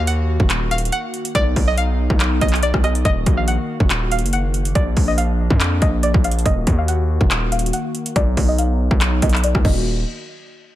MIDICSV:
0, 0, Header, 1, 5, 480
1, 0, Start_track
1, 0, Key_signature, -6, "minor"
1, 0, Tempo, 425532
1, 1523, Time_signature, 4, 2, 24, 8
1, 12128, End_track
2, 0, Start_track
2, 0, Title_t, "Synth pluck"
2, 0, Program_c, 0, 84
2, 84, Note_on_c, 0, 78, 79
2, 535, Note_off_c, 0, 78, 0
2, 802, Note_on_c, 0, 77, 86
2, 1016, Note_off_c, 0, 77, 0
2, 1043, Note_on_c, 0, 78, 87
2, 1494, Note_off_c, 0, 78, 0
2, 1526, Note_on_c, 0, 74, 117
2, 1870, Note_off_c, 0, 74, 0
2, 1890, Note_on_c, 0, 75, 86
2, 1990, Note_off_c, 0, 75, 0
2, 2003, Note_on_c, 0, 77, 92
2, 2454, Note_off_c, 0, 77, 0
2, 2723, Note_on_c, 0, 75, 84
2, 2936, Note_off_c, 0, 75, 0
2, 2966, Note_on_c, 0, 74, 99
2, 3178, Note_off_c, 0, 74, 0
2, 3201, Note_on_c, 0, 75, 81
2, 3415, Note_off_c, 0, 75, 0
2, 3443, Note_on_c, 0, 75, 108
2, 3788, Note_off_c, 0, 75, 0
2, 3805, Note_on_c, 0, 77, 76
2, 3908, Note_off_c, 0, 77, 0
2, 3923, Note_on_c, 0, 78, 79
2, 4374, Note_off_c, 0, 78, 0
2, 4643, Note_on_c, 0, 77, 85
2, 4856, Note_off_c, 0, 77, 0
2, 4886, Note_on_c, 0, 78, 83
2, 5336, Note_off_c, 0, 78, 0
2, 5362, Note_on_c, 0, 74, 114
2, 5707, Note_off_c, 0, 74, 0
2, 5729, Note_on_c, 0, 75, 86
2, 5830, Note_off_c, 0, 75, 0
2, 5839, Note_on_c, 0, 77, 93
2, 6292, Note_off_c, 0, 77, 0
2, 6562, Note_on_c, 0, 75, 85
2, 6776, Note_off_c, 0, 75, 0
2, 6802, Note_on_c, 0, 74, 93
2, 7016, Note_off_c, 0, 74, 0
2, 7042, Note_on_c, 0, 77, 80
2, 7256, Note_off_c, 0, 77, 0
2, 7280, Note_on_c, 0, 75, 109
2, 7627, Note_off_c, 0, 75, 0
2, 7653, Note_on_c, 0, 77, 77
2, 7752, Note_off_c, 0, 77, 0
2, 7764, Note_on_c, 0, 78, 84
2, 8215, Note_off_c, 0, 78, 0
2, 8482, Note_on_c, 0, 77, 86
2, 8696, Note_off_c, 0, 77, 0
2, 8724, Note_on_c, 0, 78, 90
2, 9175, Note_off_c, 0, 78, 0
2, 9204, Note_on_c, 0, 74, 120
2, 9549, Note_off_c, 0, 74, 0
2, 9570, Note_on_c, 0, 75, 87
2, 9670, Note_off_c, 0, 75, 0
2, 9685, Note_on_c, 0, 77, 88
2, 10135, Note_off_c, 0, 77, 0
2, 10404, Note_on_c, 0, 75, 85
2, 10617, Note_off_c, 0, 75, 0
2, 10647, Note_on_c, 0, 74, 96
2, 10858, Note_off_c, 0, 74, 0
2, 10884, Note_on_c, 0, 75, 84
2, 11107, Note_off_c, 0, 75, 0
2, 12128, End_track
3, 0, Start_track
3, 0, Title_t, "Analog synth pad"
3, 0, Program_c, 1, 89
3, 0, Note_on_c, 1, 51, 80
3, 0, Note_on_c, 1, 58, 74
3, 0, Note_on_c, 1, 66, 86
3, 1478, Note_off_c, 1, 58, 0
3, 1503, Note_off_c, 1, 51, 0
3, 1503, Note_off_c, 1, 66, 0
3, 1524, Note_on_c, 1, 54, 80
3, 1524, Note_on_c, 1, 59, 70
3, 1524, Note_on_c, 1, 63, 86
3, 3424, Note_off_c, 1, 54, 0
3, 3424, Note_off_c, 1, 59, 0
3, 3424, Note_off_c, 1, 63, 0
3, 3442, Note_on_c, 1, 51, 82
3, 3442, Note_on_c, 1, 58, 75
3, 3442, Note_on_c, 1, 66, 86
3, 5343, Note_off_c, 1, 51, 0
3, 5343, Note_off_c, 1, 66, 0
3, 5361, Note_on_c, 1, 53, 81
3, 5361, Note_on_c, 1, 62, 90
3, 7263, Note_off_c, 1, 53, 0
3, 7263, Note_off_c, 1, 62, 0
3, 7283, Note_on_c, 1, 51, 79
3, 7283, Note_on_c, 1, 66, 89
3, 9157, Note_off_c, 1, 58, 0
3, 9184, Note_off_c, 1, 51, 0
3, 9184, Note_off_c, 1, 66, 0
3, 9203, Note_on_c, 1, 54, 81
3, 9203, Note_on_c, 1, 59, 72
3, 9203, Note_on_c, 1, 63, 86
3, 10866, Note_off_c, 1, 54, 0
3, 10866, Note_off_c, 1, 59, 0
3, 10866, Note_off_c, 1, 63, 0
3, 10883, Note_on_c, 1, 51, 75
3, 10883, Note_on_c, 1, 58, 68
3, 10883, Note_on_c, 1, 66, 80
3, 11106, Note_off_c, 1, 51, 0
3, 11106, Note_off_c, 1, 58, 0
3, 11106, Note_off_c, 1, 66, 0
3, 12128, End_track
4, 0, Start_track
4, 0, Title_t, "808-style bass"
4, 0, Program_c, 2, 38
4, 0, Note_on_c, 2, 39, 109
4, 426, Note_off_c, 2, 39, 0
4, 450, Note_on_c, 2, 27, 98
4, 1019, Note_off_c, 2, 27, 0
4, 1522, Note_on_c, 2, 35, 110
4, 1753, Note_off_c, 2, 35, 0
4, 1764, Note_on_c, 2, 35, 106
4, 2346, Note_off_c, 2, 35, 0
4, 2369, Note_on_c, 2, 35, 105
4, 2708, Note_off_c, 2, 35, 0
4, 2723, Note_on_c, 2, 35, 104
4, 3076, Note_off_c, 2, 35, 0
4, 3089, Note_on_c, 2, 35, 102
4, 3428, Note_off_c, 2, 35, 0
4, 3442, Note_on_c, 2, 27, 110
4, 3673, Note_off_c, 2, 27, 0
4, 3683, Note_on_c, 2, 34, 107
4, 4036, Note_off_c, 2, 34, 0
4, 4289, Note_on_c, 2, 27, 103
4, 4769, Note_on_c, 2, 30, 96
4, 4786, Note_off_c, 2, 27, 0
4, 5333, Note_off_c, 2, 30, 0
4, 5362, Note_on_c, 2, 34, 112
4, 5593, Note_off_c, 2, 34, 0
4, 5603, Note_on_c, 2, 34, 105
4, 6186, Note_off_c, 2, 34, 0
4, 6209, Note_on_c, 2, 41, 102
4, 6548, Note_off_c, 2, 41, 0
4, 6563, Note_on_c, 2, 34, 107
4, 6915, Note_off_c, 2, 34, 0
4, 6929, Note_on_c, 2, 34, 104
4, 7268, Note_off_c, 2, 34, 0
4, 7282, Note_on_c, 2, 27, 110
4, 7513, Note_off_c, 2, 27, 0
4, 7524, Note_on_c, 2, 39, 104
4, 8106, Note_off_c, 2, 39, 0
4, 8130, Note_on_c, 2, 27, 103
4, 8699, Note_off_c, 2, 27, 0
4, 9203, Note_on_c, 2, 35, 111
4, 9433, Note_off_c, 2, 35, 0
4, 9444, Note_on_c, 2, 35, 107
4, 10026, Note_off_c, 2, 35, 0
4, 10050, Note_on_c, 2, 35, 101
4, 10389, Note_off_c, 2, 35, 0
4, 10404, Note_on_c, 2, 35, 106
4, 10756, Note_off_c, 2, 35, 0
4, 10770, Note_on_c, 2, 35, 103
4, 10879, Note_off_c, 2, 35, 0
4, 10883, Note_on_c, 2, 27, 114
4, 11330, Note_off_c, 2, 27, 0
4, 12128, End_track
5, 0, Start_track
5, 0, Title_t, "Drums"
5, 83, Note_on_c, 9, 42, 87
5, 196, Note_off_c, 9, 42, 0
5, 450, Note_on_c, 9, 36, 107
5, 562, Note_off_c, 9, 36, 0
5, 562, Note_on_c, 9, 42, 70
5, 563, Note_on_c, 9, 39, 98
5, 675, Note_off_c, 9, 39, 0
5, 675, Note_off_c, 9, 42, 0
5, 803, Note_on_c, 9, 42, 62
5, 882, Note_off_c, 9, 42, 0
5, 882, Note_on_c, 9, 42, 62
5, 963, Note_off_c, 9, 42, 0
5, 963, Note_on_c, 9, 42, 59
5, 1042, Note_off_c, 9, 42, 0
5, 1042, Note_on_c, 9, 42, 77
5, 1155, Note_off_c, 9, 42, 0
5, 1283, Note_on_c, 9, 42, 44
5, 1396, Note_off_c, 9, 42, 0
5, 1410, Note_on_c, 9, 42, 80
5, 1522, Note_off_c, 9, 42, 0
5, 1522, Note_on_c, 9, 36, 112
5, 1522, Note_on_c, 9, 42, 75
5, 1635, Note_off_c, 9, 36, 0
5, 1635, Note_off_c, 9, 42, 0
5, 1763, Note_on_c, 9, 46, 80
5, 1764, Note_on_c, 9, 36, 98
5, 1875, Note_off_c, 9, 46, 0
5, 1877, Note_off_c, 9, 36, 0
5, 2002, Note_on_c, 9, 42, 83
5, 2115, Note_off_c, 9, 42, 0
5, 2370, Note_on_c, 9, 36, 103
5, 2482, Note_off_c, 9, 36, 0
5, 2483, Note_on_c, 9, 39, 101
5, 2483, Note_on_c, 9, 42, 73
5, 2595, Note_off_c, 9, 39, 0
5, 2595, Note_off_c, 9, 42, 0
5, 2723, Note_on_c, 9, 36, 96
5, 2723, Note_on_c, 9, 42, 76
5, 2803, Note_off_c, 9, 42, 0
5, 2803, Note_on_c, 9, 42, 58
5, 2836, Note_off_c, 9, 36, 0
5, 2850, Note_on_c, 9, 39, 68
5, 2883, Note_off_c, 9, 42, 0
5, 2883, Note_on_c, 9, 42, 43
5, 2962, Note_off_c, 9, 42, 0
5, 2962, Note_on_c, 9, 42, 76
5, 2963, Note_off_c, 9, 39, 0
5, 3075, Note_off_c, 9, 42, 0
5, 3089, Note_on_c, 9, 36, 105
5, 3090, Note_on_c, 9, 37, 99
5, 3202, Note_off_c, 9, 36, 0
5, 3202, Note_off_c, 9, 37, 0
5, 3202, Note_on_c, 9, 37, 69
5, 3202, Note_on_c, 9, 42, 59
5, 3315, Note_off_c, 9, 37, 0
5, 3315, Note_off_c, 9, 42, 0
5, 3329, Note_on_c, 9, 42, 63
5, 3442, Note_off_c, 9, 42, 0
5, 3442, Note_on_c, 9, 36, 119
5, 3442, Note_on_c, 9, 42, 73
5, 3554, Note_off_c, 9, 42, 0
5, 3555, Note_off_c, 9, 36, 0
5, 3681, Note_on_c, 9, 42, 73
5, 3683, Note_on_c, 9, 36, 97
5, 3794, Note_off_c, 9, 42, 0
5, 3796, Note_off_c, 9, 36, 0
5, 3921, Note_on_c, 9, 42, 86
5, 4034, Note_off_c, 9, 42, 0
5, 4289, Note_on_c, 9, 36, 103
5, 4402, Note_off_c, 9, 36, 0
5, 4402, Note_on_c, 9, 39, 100
5, 4402, Note_on_c, 9, 42, 70
5, 4515, Note_off_c, 9, 39, 0
5, 4515, Note_off_c, 9, 42, 0
5, 4642, Note_on_c, 9, 42, 65
5, 4722, Note_off_c, 9, 42, 0
5, 4722, Note_on_c, 9, 42, 62
5, 4801, Note_off_c, 9, 42, 0
5, 4801, Note_on_c, 9, 42, 61
5, 4882, Note_off_c, 9, 42, 0
5, 4882, Note_on_c, 9, 42, 75
5, 4994, Note_off_c, 9, 42, 0
5, 5122, Note_on_c, 9, 42, 45
5, 5234, Note_off_c, 9, 42, 0
5, 5249, Note_on_c, 9, 42, 79
5, 5362, Note_off_c, 9, 42, 0
5, 5362, Note_on_c, 9, 36, 116
5, 5362, Note_on_c, 9, 42, 74
5, 5474, Note_off_c, 9, 36, 0
5, 5475, Note_off_c, 9, 42, 0
5, 5602, Note_on_c, 9, 46, 82
5, 5603, Note_on_c, 9, 36, 100
5, 5715, Note_off_c, 9, 46, 0
5, 5716, Note_off_c, 9, 36, 0
5, 5842, Note_on_c, 9, 42, 87
5, 5955, Note_off_c, 9, 42, 0
5, 6209, Note_on_c, 9, 36, 107
5, 6322, Note_off_c, 9, 36, 0
5, 6322, Note_on_c, 9, 42, 72
5, 6323, Note_on_c, 9, 39, 103
5, 6435, Note_off_c, 9, 39, 0
5, 6435, Note_off_c, 9, 42, 0
5, 6562, Note_on_c, 9, 42, 75
5, 6563, Note_on_c, 9, 36, 100
5, 6675, Note_off_c, 9, 42, 0
5, 6676, Note_off_c, 9, 36, 0
5, 6803, Note_on_c, 9, 42, 77
5, 6916, Note_off_c, 9, 42, 0
5, 6929, Note_on_c, 9, 36, 109
5, 7042, Note_off_c, 9, 36, 0
5, 7043, Note_on_c, 9, 42, 73
5, 7123, Note_off_c, 9, 42, 0
5, 7123, Note_on_c, 9, 42, 58
5, 7203, Note_off_c, 9, 42, 0
5, 7203, Note_on_c, 9, 42, 44
5, 7282, Note_off_c, 9, 42, 0
5, 7282, Note_on_c, 9, 36, 115
5, 7282, Note_on_c, 9, 42, 76
5, 7395, Note_off_c, 9, 36, 0
5, 7395, Note_off_c, 9, 42, 0
5, 7523, Note_on_c, 9, 42, 76
5, 7524, Note_on_c, 9, 36, 96
5, 7635, Note_off_c, 9, 42, 0
5, 7637, Note_off_c, 9, 36, 0
5, 7763, Note_on_c, 9, 42, 85
5, 7876, Note_off_c, 9, 42, 0
5, 8130, Note_on_c, 9, 36, 103
5, 8243, Note_off_c, 9, 36, 0
5, 8243, Note_on_c, 9, 39, 99
5, 8243, Note_on_c, 9, 42, 69
5, 8356, Note_off_c, 9, 39, 0
5, 8356, Note_off_c, 9, 42, 0
5, 8483, Note_on_c, 9, 42, 63
5, 8563, Note_off_c, 9, 42, 0
5, 8563, Note_on_c, 9, 42, 64
5, 8643, Note_off_c, 9, 42, 0
5, 8643, Note_on_c, 9, 42, 60
5, 8723, Note_off_c, 9, 42, 0
5, 8723, Note_on_c, 9, 42, 76
5, 8836, Note_off_c, 9, 42, 0
5, 8964, Note_on_c, 9, 42, 44
5, 9076, Note_off_c, 9, 42, 0
5, 9091, Note_on_c, 9, 42, 77
5, 9203, Note_off_c, 9, 42, 0
5, 9203, Note_on_c, 9, 36, 113
5, 9203, Note_on_c, 9, 42, 73
5, 9316, Note_off_c, 9, 36, 0
5, 9316, Note_off_c, 9, 42, 0
5, 9444, Note_on_c, 9, 36, 97
5, 9444, Note_on_c, 9, 46, 83
5, 9556, Note_off_c, 9, 46, 0
5, 9557, Note_off_c, 9, 36, 0
5, 9684, Note_on_c, 9, 42, 86
5, 9796, Note_off_c, 9, 42, 0
5, 10050, Note_on_c, 9, 36, 106
5, 10163, Note_off_c, 9, 36, 0
5, 10163, Note_on_c, 9, 39, 98
5, 10163, Note_on_c, 9, 42, 71
5, 10276, Note_off_c, 9, 39, 0
5, 10276, Note_off_c, 9, 42, 0
5, 10403, Note_on_c, 9, 42, 76
5, 10404, Note_on_c, 9, 36, 98
5, 10484, Note_off_c, 9, 42, 0
5, 10484, Note_on_c, 9, 42, 60
5, 10517, Note_off_c, 9, 36, 0
5, 10531, Note_on_c, 9, 39, 69
5, 10564, Note_off_c, 9, 42, 0
5, 10564, Note_on_c, 9, 42, 43
5, 10644, Note_off_c, 9, 39, 0
5, 10644, Note_off_c, 9, 42, 0
5, 10644, Note_on_c, 9, 42, 75
5, 10756, Note_off_c, 9, 42, 0
5, 10770, Note_on_c, 9, 36, 104
5, 10771, Note_on_c, 9, 37, 98
5, 10883, Note_off_c, 9, 36, 0
5, 10883, Note_on_c, 9, 36, 111
5, 10883, Note_on_c, 9, 49, 89
5, 10884, Note_off_c, 9, 37, 0
5, 10996, Note_off_c, 9, 36, 0
5, 10996, Note_off_c, 9, 49, 0
5, 12128, End_track
0, 0, End_of_file